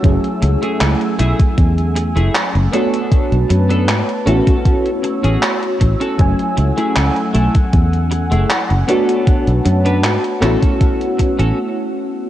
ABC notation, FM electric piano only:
X:1
M:4/4
L:1/8
Q:1/4=78
K:F#m
V:1 name="FM electric piano"
[F,A,CEG]6- [F,A,CEG] [A,B,DFc]- | [A,B,DFc]3 [A,B,CEF]4- [A,B,CEF] | [F,A,CEg]6- [F,A,CEg] [A,B,DFc]- | [A,B,DFc]3 [A,B,CEF]3 z2 |]